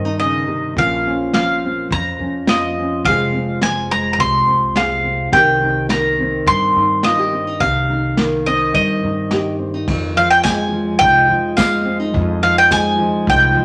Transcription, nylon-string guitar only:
0.00 0.73 G2 medium
0.00 0.76 D#3 medium
0.00 0.22 C4 medium
0.05 0.76 D#4 soft
0.19 0.47 C#3 soft
0.47 0.76 C3 medium
0.77 1.91 A#2 medium
0.77 1.35 F3 medium
0.77 1.64 C4 soft
0.77 1.05 C#4 medium
0.77 2.48 F4 medium
1.07 2.19 C#4 medium
1.35 3.02 F3 medium
1.65 3.07 C4 medium
1.91 3.05 F2 medium
2.20 2.77 C#4 soft
2.49 3.06 F4 medium
2.78 3.03 C#4 soft
3.06 5.34 F2 medium
3.06 3.61 F3 medium
3.06 3.90 G#3 medium
3.06 3.34 C4 medium
3.06 4.75 G#4 medium
3.35 4.48 C4 medium
3.63 5.30 F3 medium
3.91 5.33 G#3 medium
4.20 5.30 C3 medium
4.48 5.04 C4 medium
4.76 5.30 G#4 medium
5.05 5.34 C4 medium
5.32 5.89 C3 medium
5.32 5.89 D#3 medium
5.32 6.20 C4 medium
5.32 5.62 D#4 medium
5.32 7.04 G4 medium
5.63 6.76 D#4 medium
5.90 8.16 D#3 medium
6.20 7.33 C4 medium
6.48 7.58 G2 medium
6.77 7.32 D#4 medium
7.05 7.19 F4 medium
7.19 7.61 G4 medium
7.33 7.47 C4 soft
7.47 7.61 D#4 soft
7.62 8.18 C3 medium
7.90 9.03 D#4 medium
8.17 10.16 D#3 medium
8.47 9.58 C4 medium
8.74 9.84 G2 medium
9.04 9.59 D#4 medium
9.33 9.85 G4 medium
9.59 9.74 C4 soft
9.74 9.88 D#4 soft
9.88 12.13 F2 medium
10.16 10.72 F3 medium
10.45 11.58 G#3 medium
10.72 11.29 F3 medium
11.02 11.84 D#4 medium
11.29 12.42 F3 medium
11.58 12.70 G#3 medium
11.85 12.00 C4 medium
12.00 12.14 D#4 medium
12.14 13.65 F2 medium
12.42 12.98 F3 medium
12.71 13.65 G#3 medium
12.98 13.56 F3 medium
13.28 13.65 D#4 medium
13.56 13.65 F3 medium

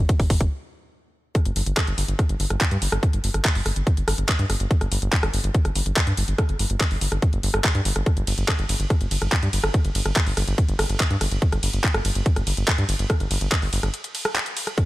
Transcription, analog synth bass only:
0.20 0.25 G1 medium
0.30 0.36 G1 loud
0.41 0.46 G1 loud
1.45 1.51 G1 medium
1.56 1.62 G1 loud
1.66 1.72 G1 medium
1.87 1.93 G1 medium
1.98 2.04 G1 loud
2.08 2.14 G1 loud
2.29 2.35 G1 medium
2.40 2.46 G1 loud
2.50 2.56 G1 medium
2.71 2.77 G2 medium
2.82 2.88 G1 loud
2.92 2.98 G1 medium
3.13 3.19 G1 medium
3.24 3.30 G1 loud
3.34 3.40 G1 medium
3.55 3.61 G1 medium
3.66 3.72 G1 loud
3.76 3.82 G1 loud
3.97 4.03 G1 medium
4.08 4.13 G1 loud
4.18 4.24 G1 medium
4.39 4.45 G2 medium
4.50 4.55 G1 loud
4.60 4.66 G1 medium
4.81 4.87 G1 medium
4.92 4.97 G1 loud
5.02 5.08 G1 medium
5.23 5.29 G1 medium
5.34 5.39 G1 loud
5.44 5.50 G1 loud
5.65 5.71 G1 medium
5.75 5.81 G1 loud
5.86 5.92 G1 medium
6.07 6.13 G2 medium
6.17 6.23 G1 loud
6.28 6.34 G1 medium
6.49 6.55 G1 medium
6.59 6.65 G1 loud
6.70 6.76 G1 loud
6.91 6.97 G1 medium
7.01 7.07 G1 loud
7.12 7.18 G1 loud
7.33 7.39 G1 medium
7.43 7.49 G1 loud
7.54 7.60 G1 medium
7.75 7.81 G2 medium
7.85 7.91 G1 loud
7.96 8.02 G1 loud
8.17 8.23 G1 medium
8.27 8.33 G1 loud
8.38 8.44 G1 medium
8.59 8.64 G1 medium
8.69 8.75 G1 loud
8.80 8.85 G1 loud
9.01 9.06 G1 medium
9.11 9.17 G1 loud
9.22 9.27 G1 medium
9.43 9.48 G2 medium
9.53 9.59 G1 loud
9.64 9.69 G1 medium
9.85 9.90 G1 medium
9.95 10.01 G1 loud
10.06 10.11 G1 medium
10.27 10.32 G1 medium
10.37 10.43 G1 loud
10.48 10.53 G1 loud
10.69 10.74 G1 medium
10.79 10.85 G1 loud
10.90 10.95 G1 medium
11.11 11.16 G2 medium
11.21 11.27 G1 loud
11.31 11.37 G1 medium
11.52 11.58 G1 medium
11.63 11.69 G1 loud
11.73 11.79 G1 medium
11.94 12.00 G1 medium
12.05 12.11 G1 loud
12.15 12.21 G1 loud
12.36 12.42 G1 medium
12.47 12.53 G1 loud
12.57 12.63 G1 medium
12.78 12.84 G2 medium
12.89 12.95 G1 loud
12.99 13.05 G1 medium
13.20 13.26 G1 medium
13.31 13.37 G1 loud
13.41 13.47 G1 medium
13.62 13.68 G1 medium
13.73 13.79 G1 loud
13.83 13.89 G1 loud

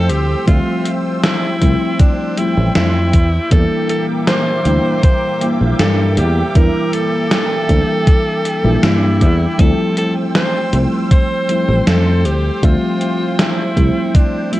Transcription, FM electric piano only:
0.00 0.46 F3 medium
0.00 0.47 G3 medium
0.00 0.48 A3 medium
0.00 0.48 C4 medium
0.00 1.63 E4 medium
0.46 1.56 F3 loud
0.46 1.57 G3 medium
0.46 1.57 A3 medium
0.46 1.57 C4 medium
0.46 1.58 E5 loud
1.61 2.33 F3 medium
1.61 2.33 G3 medium
1.61 2.33 A3 medium
1.61 2.33 C4 medium
1.61 2.34 E4 medium
2.37 3.11 F3 medium
2.37 3.11 G3 medium
2.37 3.11 A3 medium
2.37 3.12 C4 medium
2.37 3.12 E4 medium
3.50 4.60 E3 loud
3.50 4.61 G3 medium
3.50 4.61 A#3 medium
3.50 4.61 D4 medium
3.50 4.62 E4 loud
4.65 5.37 E3 medium
4.65 5.37 G3 medium
4.65 5.37 A#3 medium
4.65 5.37 D4 medium
4.65 5.38 E4 medium
5.40 6.50 E3 medium
5.40 6.51 G3 medium
5.40 6.51 A#3 medium
5.40 6.51 D4 medium
5.40 6.52 E4 medium
6.54 7.64 E3 loud
6.54 7.65 G3 medium
6.54 7.65 A#3 medium
6.54 7.65 D4 medium
6.54 7.66 E4 loud
7.69 8.40 E3 medium
7.69 8.41 G3 medium
7.69 8.41 A#3 medium
7.69 8.41 D4 medium
7.69 8.41 E4 medium
8.63 9.54 E3 medium
8.63 9.54 G3 medium
8.63 9.55 A#3 medium
8.63 9.55 D4 medium
8.63 9.55 E4 loud
9.57 10.68 F3 loud
9.57 10.68 G3 medium
9.57 10.68 A3 medium
9.57 10.69 C4 medium
9.57 10.69 E4 loud
10.73 11.44 F3 medium
10.73 11.44 G3 medium
10.73 11.45 A3 medium
10.73 11.45 C4 medium
10.73 11.45 E4 medium
11.48 12.58 F3 medium
11.48 12.58 G3 medium
11.48 12.59 A3 medium
11.48 12.59 C4 medium
11.48 12.59 E4 medium
12.61 13.72 F3 loud
12.61 13.72 G3 medium
12.61 13.72 A3 medium
12.61 13.73 C4 medium
12.61 13.73 E5 loud
13.76 14.48 F3 medium
13.76 14.48 G3 medium
13.76 14.48 A3 medium
13.76 14.48 C4 medium
13.76 14.49 E4 medium
14.52 14.60 F3 medium
14.52 14.60 G3 medium
14.52 14.60 A3 medium
14.52 14.60 C4 medium
14.52 14.60 E4 medium

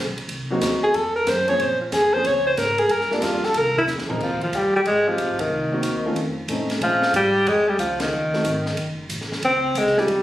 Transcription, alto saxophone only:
0.83 0.97 G#4 medium
0.95 1.15 A4 medium
1.16 1.30 A#4 medium
1.28 1.50 C5 medium
1.48 1.62 C#5 loud
1.61 1.80 C5 medium
1.81 1.95 F4 medium
1.93 2.15 G#4 medium
2.13 2.28 C5 loud
2.27 2.46 C#5 loud
2.47 2.60 C5 medium
2.58 2.81 A#4 medium
2.79 2.93 G#4 medium
2.92 3.12 A#4 loud
3.13 3.25 D4 medium
3.24 3.46 F4 medium
3.45 3.59 A4 loud
3.57 3.77 A#4 loud
3.78 3.84 E4 medium
4.23 4.41 F3 medium
4.43 4.57 F3 medium
4.56 4.75 G3 medium
4.76 4.81 G3 medium
4.87 5.10 G#3 medium
5.08 5.41 F3 medium
5.40 6.38 D#3 medium
6.83 7.13 F3 medium
7.16 7.50 G3 medium
7.48 7.70 G#3 medium
7.68 7.79 G3 medium
7.80 7.99 F3 medium
8.02 8.95 D#3 medium
9.45 9.80 C4 medium
9.78 10.00 G#3 medium
9.99 10.23 G3 medium

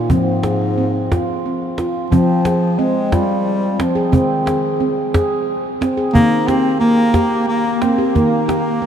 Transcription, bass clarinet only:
0.00 0.12 A#2 loud
0.10 1.45 G#2 medium
2.11 2.80 F3 loud
2.79 3.14 G#3 loud
3.13 3.83 G3 loud
3.82 4.16 F3 medium
4.14 5.14 D#3 medium
6.14 6.49 A#3 loud
6.47 6.79 C4 loud
6.80 7.43 A#3 loud
7.48 7.83 A#3 loud
7.82 8.17 C4 medium
8.16 8.86 A#3 loud

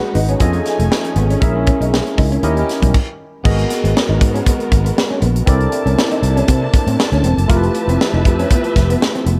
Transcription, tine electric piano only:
0.00 0.38 D#4 medium
0.00 0.38 F#4 medium
0.00 0.39 G#4 medium
0.00 0.39 B4 medium
0.00 0.39 F#5 medium
0.39 1.39 C#4 medium
0.39 1.40 F4 medium
0.39 1.40 G#4 medium
0.39 1.40 A4 medium
0.39 1.41 D#5 medium
1.40 2.41 C#4 medium
1.40 2.41 E4 medium
1.40 2.41 G#4 medium
1.40 2.42 A#4 medium
1.40 2.42 E5 medium
2.43 2.94 C#4 medium
2.43 2.94 E4 medium
2.43 2.94 G4 medium
2.43 2.95 A#4 medium
2.43 2.95 D#5 medium
3.44 5.43 B3 medium
3.44 5.43 F#4 medium
3.44 5.43 G#4 medium
3.44 5.44 A#4 medium
3.44 5.44 D#5 medium
5.46 7.45 C4 medium
5.46 7.45 E4 medium
5.46 7.46 A4 medium
5.46 7.46 A#4 medium
5.46 7.46 D5 medium
7.48 9.39 A3 medium
7.48 9.39 E4 medium
7.48 9.39 F4 medium
7.48 9.39 G4 medium
7.48 7.56 A#4 medium
7.56 9.39 B4 medium

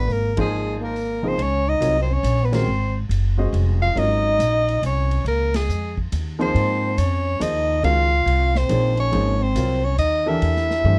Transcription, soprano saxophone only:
0.00 0.13 B4 medium
0.12 0.39 A#4 medium
0.40 0.79 G#4 medium
0.84 1.29 A#4 medium
1.28 1.44 C5 medium
1.42 1.70 C#5 loud
1.69 2.02 D#5 medium
2.02 2.15 C5 medium
2.13 2.47 C#5 loud
2.45 2.56 B4 medium
2.54 2.97 C5 medium
3.82 4.00 F5 loud
3.99 4.84 D#5 loud
4.86 5.24 C#5 medium
5.27 5.57 A#4 medium
5.56 5.98 G#4 medium
6.42 6.99 C5 medium
6.98 7.43 C#5 medium
7.42 7.84 D#5 medium
7.84 8.59 F5 loud
8.57 8.99 C5 medium
9.00 9.44 C#5 loud
9.43 9.86 C5 medium
9.84 9.98 C#5 medium
9.99 10.30 D#5 loud
10.28 10.99 E5 medium

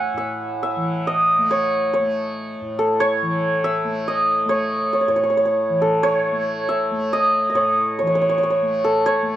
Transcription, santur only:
0.00 1.43 C#5 medium
0.00 0.17 E5 medium
0.00 2.11 F#5 medium
0.00 1.54 G#5 medium
0.18 0.62 E5 medium
0.63 1.13 E5 medium
1.07 3.46 D#5 medium
1.51 1.93 C#5 medium
1.93 3.00 C#5 medium
2.79 5.72 A4 medium
3.00 4.49 C#5 loud
3.64 4.14 E5 medium
4.08 6.46 D#5 medium
4.49 4.93 C#5 medium
4.93 5.01 C#5 medium
5.01 5.08 C#5 soft
5.08 5.16 C#5 medium
5.16 5.23 C#5 medium
5.23 5.29 C#5 medium
5.30 5.37 C#5 soft
5.37 5.45 C#5 medium
5.45 6.03 C#5 medium
5.82 8.74 A4 medium
6.03 7.55 C#5 medium
6.69 7.19 E5 medium
7.13 7.49 D#5 medium
7.50 9.36 D#5 soft
7.55 7.98 C#5 medium
7.99 8.07 C#5 medium
8.07 8.15 C#5 medium
8.15 8.21 C#5 medium
8.21 8.29 C#5 medium
8.29 8.38 C#5 medium
8.38 8.43 C#5 soft
8.43 8.50 C#5 medium
8.50 9.05 C#5 soft
8.84 9.36 A4 medium
9.06 9.36 C#5 loud

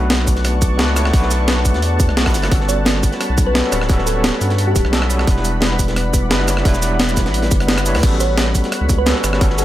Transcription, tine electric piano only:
0.00 0.75 A3 loud
0.00 0.76 B3 medium
0.00 0.77 D4 medium
0.00 0.78 F#4 medium
0.00 0.79 B4 loud
0.77 0.93 A3 medium
0.77 0.94 B3 medium
0.77 0.94 D4 medium
0.77 0.95 F#4 medium
0.77 0.95 B4 loud
0.95 1.09 A3 medium
0.95 1.11 B3 medium
0.95 1.12 D4 medium
0.95 1.12 F#4 medium
0.95 1.13 C#5 medium
1.10 2.13 A3 medium
1.10 2.14 B3 medium
1.10 2.15 D4 medium
1.15 2.16 F#4 medium
1.15 2.17 B4 loud
2.24 2.49 A3 medium
2.24 2.49 B3 medium
2.24 2.50 D4 medium
2.24 2.50 F#4 medium
2.24 2.50 B4 medium
2.48 3.51 G3 medium
2.48 3.52 B3 medium
2.48 3.53 C#4 medium
2.53 3.54 F#4 medium
2.53 3.55 A4 loud
3.53 3.69 G3 medium
3.53 3.70 B3 medium
3.53 3.70 C#4 medium
3.53 3.71 F#4 medium
3.53 3.71 A4 loud
3.71 3.85 G3 medium
3.71 3.87 B3 medium
3.71 3.88 C#4 medium
3.71 3.88 F#4 medium
3.71 3.88 B4 medium
3.86 4.89 G3 medium
3.86 4.90 B3 medium
3.86 4.91 C#4 medium
3.91 4.92 F#4 medium
3.91 4.93 A4 loud
4.91 5.07 G3 medium
4.91 5.08 B3 medium
4.91 5.08 C#4 medium
4.91 5.09 F#4 medium
4.91 5.09 A4 loud
5.09 5.23 G3 medium
5.09 5.25 B3 medium
5.09 5.26 C#4 medium
5.09 5.26 F#4 medium
5.09 5.26 B4 medium
5.24 6.27 G3 medium
5.24 6.28 B3 medium
5.24 6.29 D4 medium
5.29 6.30 E4 medium
5.29 6.31 B4 loud
6.29 6.45 G3 medium
6.29 6.46 B3 medium
6.29 6.46 D4 medium
6.29 6.46 E4 medium
6.29 6.47 B4 loud
6.46 6.61 G3 medium
6.46 6.62 B3 medium
6.46 6.63 D4 medium
6.46 6.64 E4 medium
6.46 6.64 C#5 medium
6.62 7.65 G3 medium
6.62 7.66 B3 medium
6.62 7.67 D4 medium
6.67 7.68 E4 medium
6.67 7.68 B4 loud
7.67 7.83 G3 medium
7.67 7.84 B3 medium
7.67 7.84 D4 medium
7.67 7.84 E4 medium
7.67 7.85 B4 loud
7.84 7.98 G3 medium
7.84 8.00 B3 medium
7.84 8.01 D4 medium
7.84 8.02 E4 medium
7.84 8.02 C#5 loud
7.99 9.03 G3 medium
7.99 9.04 B3 medium
7.99 9.05 C#4 medium
8.05 9.05 F#4 medium
8.05 9.06 A4 loud
9.05 9.21 G3 medium
9.05 9.21 B3 medium
9.05 9.22 C#4 medium
9.05 9.22 F#4 medium
9.05 9.23 A4 loud
9.22 9.36 G3 medium
9.22 9.38 B3 medium
9.22 9.39 C#4 medium
9.22 9.40 F#4 medium
9.22 9.40 B4 medium
9.38 9.65 G3 medium
9.38 9.65 B3 medium
9.38 9.65 C#4 medium
9.43 9.65 F#4 medium
9.43 9.65 A4 loud

